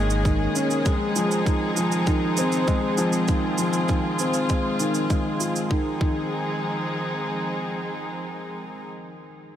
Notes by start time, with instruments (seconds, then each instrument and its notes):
Already playing: analog synth bass G#1, grand piano D#3 G#3 A#3 C#4, string section D#3 G#3 A#3 C#4 G#4
0.10 shaker
0.25 grand piano D#3, kick, shaker
0.55 grand piano C#4, shaker
0.70 shaker
0.85 string section F3 C4 D#4, grand piano G#3, kick, shaker
1.16 grand piano F3, shaker
1.31 shaker
1.46 grand piano D#3, kick, shaker
1.77 grand piano F3, shaker
1.92 shaker
2.07 grand piano D#3, kick, shaker
2.37 grand piano C4, shaker
2.52 shaker
2.68 grand piano G#3, kick, shaker
2.98 grand piano F3, shaker
3.13 shaker
3.28 grand piano D#3, string section F4, kick, shaker
3.58 grand piano F3, shaker
3.73 shaker
3.88 grand piano D#3, kick, shaker
4.19 grand piano C4, shaker
4.34 shaker
4.49 grand piano G#3, kick, shaker
4.80 grand piano D#3, shaker
4.94 shaker
5.10 grand piano G#3, kick, shaker
5.40 grand piano F4, shaker
5.56 shaker
5.71 grand piano D#3, string section F3 G#3 C4 D#4 G#4, kick
6.01 grand piano D#3, kick